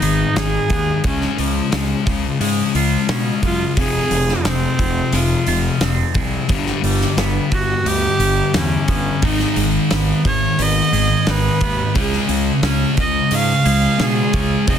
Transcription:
Already playing: G#3 B3 D#4
0.02 G#1 G#2 D#3 G#4, open hi-hat
0.36 G#1 G#2 D#3 D#4 G#4, snare, open hi-hat
0.70 D#2 G#2 D#3 B3, kick, open hi-hat
1.03 C#2 C#3 G#3 C#4, kick, open hi-hat
1.22 snare
1.38 C#2 C#3 F3 G#3, open hi-hat
1.72 C#2 C#3 G#3, snare, open hi-hat
2.06 C#2 C#3 F3 G#3, kick, open hi-hat
2.40 G#2 C#3 G#3, open hi-hat
2.75 C#2 C#3 G#3 F4, open hi-hat
3.09 B2 C#3 G#3 C#4, snare, open hi-hat
3.42 F#2 C#3 G#3 F4, kick, open hi-hat
3.77 F1 F2 C3 F3 G#4, kick, open hi-hat
4.10 F1 F2 C3 F3, open hi-hat
4.29 snare
4.45 F1 F2 C3 G#3 C4, snare, open hi-hat
4.78 F1 F2 C3 F3, kick, open hi-hat
5.13 F1 F2 C3 G#3 F4, open hi-hat
5.47 F1 F2 C3 F4, open hi-hat
5.80 F1 F2 C3 C4, snare, open hi-hat
6.14 C2 F2 C3 G#3, kick, open hi-hat
6.48 G1 G2 D3 G3, kick, open hi-hat
6.67 snare
6.83 G1 G2 D3 G3, open hi-hat
7.01 snare
7.17 G1 G2 D3 B3, snare, open hi-hat
7.51 G1 G2 D3 G3 F#4, kick, open hi-hat
7.85 D2 G2 D3 B3 G4, open hi-hat
8.19 G1 G2 D3 G4, open hi-hat
8.53 E2 G2 D3 C#4, snare, open hi-hat
8.87 G1 G2 D3 B3, kick, open hi-hat
9.22 G#1 G#2 D#3 G#3 D#4, kick, open hi-hat
9.40 snare
9.56 G#1 G#2 D#3 G#3, open hi-hat
9.90 G#1 G#2 D#3 B3, snare, open hi-hat
10.25 G#1 G#2 D#3 G#3 C#5, kick, open hi-hat
10.58 G#1 G#2 D#3 B3, open hi-hat
10.62 D#5
10.92 G#1 G#2 D#3 G#4, open hi-hat
11.27 G#1 G#2 D#3 D#4 B4, snare, open hi-hat
11.61 D#2 G#2 D#3 B3, kick, open hi-hat
11.94 C#2 C#3 G#3 C#4 G#4, kick, open hi-hat
12.13 snare
12.29 C#2 C#3 G#3, open hi-hat
12.62 C#2 C#3 G#3 C#4, snare, open hi-hat
12.97 C#2 C#3 G#3 D#5, kick, open hi-hat
13.31 G#2 C#3 G#3 C#4 F5, open hi-hat
13.65 C#2 C#3 G#3 G#4, open hi-hat
13.99 B2 C#3 G#3 F4 G#4, snare, open hi-hat
14.33 C#2 C#3 G#3 C#4, kick, open hi-hat
14.67 F1 F2 C3 F3 D#5, kick, open hi-hat

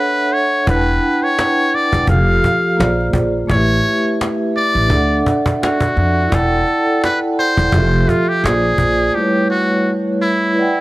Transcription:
Already playing: D4 A4 B4 C#5 E5 F#5
0.33 C#5
0.67 E1 D4 E4 B4, cajon bass
0.72 F#5 G5 A5
1.03 cajon slap
1.22 C#5, cajon slap
1.39 cajon slap
1.74 D5, cajon slap
1.93 E1, cajon bass
2.06 F1 F3 F4 G4 A4 F5, cajon bass
2.10 F5
2.44 cajon bass
2.77 A#1 A#3 F4 G#4 C5, cajon slap
2.81 D5
3.13 A#1, cajon bass
3.47 A1 A3 E4 C#5, cajon bass
3.52 G4 B4
3.56 E5
3.85 cajon slap
4.04 cajon slap
4.21 cajon slap
4.57 D5, cajon slap
4.75 A1
4.87 D2 D4 A4, cajon bass
4.91 D5 E5
4.95 F#5
5.26 cajon bass
5.46 cajon bass
5.63 F#4, cajon slap
5.80 cajon bass
5.96 F2, cajon slap
6.27 E4 A4 D5
6.32 E1 A4 F#5 G5 A5, cajon bass
6.67 cajon slap
6.87 cajon slap
7.04 B4, cajon slap
7.39 C5, cajon slap
7.57 E1, cajon bass
7.72 F1 F3 F4 G4 A4, cajon bass
7.76 E5
8.09 F4, cajon bass
8.29 G4
8.43 A#1 A#3 F4 G#4 C5 D5, cajon slap
8.78 A#1, cajon bass
9.12 A3 E4 G4
9.16 G3 B4
9.21 C#5
9.50 F#4
10.21 E4
10.53 E4 B4
10.57 D5 F#5
10.61 G5

